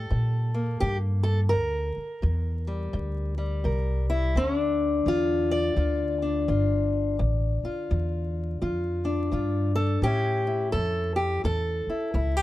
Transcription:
Already playing: G3 A4
0.11 G2 A#2
0.54 A#3
0.80 G2 G4
1.23 A4
1.49 D2 G2 A#4
1.96 muted upright bass stroke
2.22 E2 G2
2.67 G3
2.93 D2 G2
3.38 G3
3.64 C2 G2 A#4
4.10 E4
4.35 D2 D3 C#4
4.57 D4
5.06 D2 E2 F4
5.51 D5
5.76 D2 F4
6.22 D4
6.48 G1 D2 F4
7.19 A1 D2
7.63 F4, muted upright bass stroke
7.91 D2 E2
8.62 D2 F2 F4
9.05 D4
9.32 D2 G2 F4
9.75 A4
10.02 A2 C#4 E4 G4
10.47 E4
10.72 F2 A2 A4
11.16 G4
11.44 E2 A2 A4
11.87 E4, muted upright bass stroke
12.14 C#2 A2 E4
12.37 G4

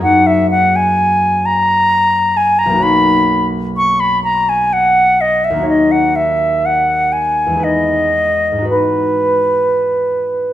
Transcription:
Already playing: F#2 A#3 D#4 G#4 A#4
0.00 C#5 F#5
0.27 E5
0.51 F#5
0.76 G#5
1.46 A#5
2.37 G#5
2.59 A#5
2.66 B1 A#3
2.73 D#4 F#4
2.79 C#5 B5
3.77 C#6
4.00 B5
4.24 A#5
4.49 G#5
4.73 F#5
5.21 D#5
5.44 E5
5.50 D#2 A#3
5.56 D#4 F#4
5.63 C#5
5.69 D#5
5.91 F#5
6.16 E5
6.66 F#5
7.12 G#5
7.47 E2 G#3
7.53 D#4 G#4
7.59 B4
7.64 D#5
8.52 G#2 G#3
8.58 D#4 F#4
8.65 B4
8.70 B4

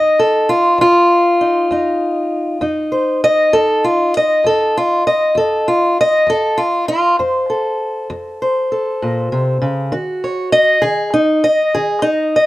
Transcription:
Already playing: F2 D#4 D#5
0.19 A4
0.49 F4
0.78 F2 F4
1.41 D#4
1.71 F2 D#4
2.61 F2 D#4
2.92 C5
3.24 D#5
3.53 F2 A4
3.84 F4
4.17 D#5
4.44 F2 A4
4.77 F4
5.07 D#5
5.35 F2 A4
5.68 F4
6.01 D#5
6.27 F2 A4
6.58 F4
6.88 F4
7.19 F2 C5
7.50 A4
8.10 F2
8.42 C5
8.72 A4
9.02 A#2
9.32 C3
9.62 C#3
9.92 D#3 F#4
10.24 C#5
10.52 D#5
10.82 D#3 G#4
11.14 D#4
11.44 D#5
11.75 D#3 G#4
12.02 D#4
12.36 D#5

